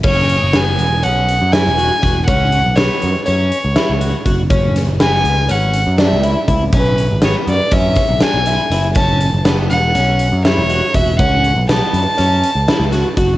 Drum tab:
CC |x--------|---------|---------|---------|
HH |-xxxxxxxx|xxxxxxxxx|xxxxxxxxx|xxxxxxxxx|
SD |--o---o-o|--o---o--|-oo---o--|--o--oo-o|
BD |o-------o|o-------o|o-------o|o---oo---|

CC |---------|---------|
HH |xxxxxxxxx|xxxxxxxxx|
SD |--oo--o--|--o---oo-|
BD |o-------o|o-------o|